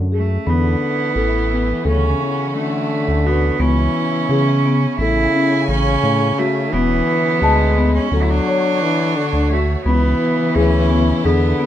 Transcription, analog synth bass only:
0.00 0.38 F#2 medium
0.47 0.76 E2 medium
1.16 1.73 A1 medium
1.85 2.14 D2 medium
3.08 3.51 D2 medium
3.59 3.88 C#2 loud
4.29 4.87 C#3 medium
4.98 5.27 A1 medium
5.68 5.97 A1 loud
6.03 6.32 A2 medium
6.73 7.02 E1 loud
7.42 7.99 D2 loud
8.11 8.40 D2 medium
9.33 9.76 D2 medium
9.86 10.14 C#2 loud
10.55 11.13 D2 medium
11.25 11.54 E2 medium

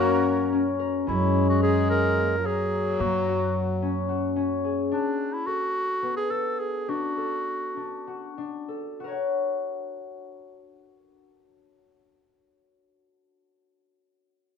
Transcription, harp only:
0.00 2.09 A#3 medium
0.00 0.52 C#4 medium
0.00 2.41 F#4 medium
0.52 1.06 C#4 medium
0.79 1.61 A#4 medium
1.07 3.82 C#4 medium
1.62 2.45 A#4 medium
2.17 2.99 A#3 medium
2.45 4.57 A#4 medium
2.99 5.53 A#3 medium
3.27 4.08 F#4 medium
3.82 4.36 C#4 medium
4.09 6.53 F#4 medium
4.36 4.97 C#4 medium
4.64 5.53 G#4 medium
4.91 6.88 D4 medium
5.47 6.30 A4 medium
6.02 9.10 B3 medium
6.30 7.17 A4 medium
6.88 7.76 D4 medium
7.17 8.68 A4 medium
7.77 8.37 D4 medium
8.07 9.00 F#4 medium
8.38 9.14 D4 medium
8.68 9.10 A4 soft
9.00 13.66 F#4 soft
9.04 13.70 A#4 medium
9.04 13.74 C#5 soft
9.12 13.78 F#5 soft

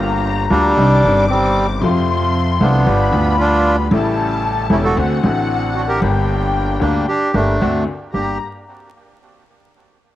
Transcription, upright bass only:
0.00 0.46 G1 medium
0.50 0.72 D2 loud
0.77 0.99 C2 loud
1.04 1.79 G1 medium
1.82 2.57 F2 loud
2.61 2.83 C2 loud
2.87 3.09 G1 loud
3.13 3.88 D2 medium
3.91 4.66 A1 loud
4.70 4.92 E1 loud
4.97 5.19 D2 loud
5.23 5.98 A1 loud
6.01 6.77 G1 loud
6.81 7.03 D2 loud
7.34 7.56 G1 medium
7.61 7.83 D2 medium
8.14 8.36 G1 medium

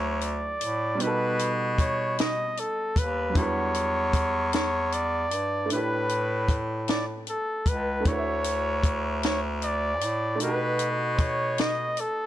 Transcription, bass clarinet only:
0.00 0.57 D2 loud
0.63 1.03 A2 loud
1.02 2.66 B2 loud
2.97 3.32 D#2 loud
3.36 5.34 E2 loud
5.33 5.67 G2 loud
5.72 7.36 A2 loud
7.67 8.02 C#2 loud
8.06 10.04 D2 loud
10.03 10.43 A2 loud
10.42 12.06 B2 loud

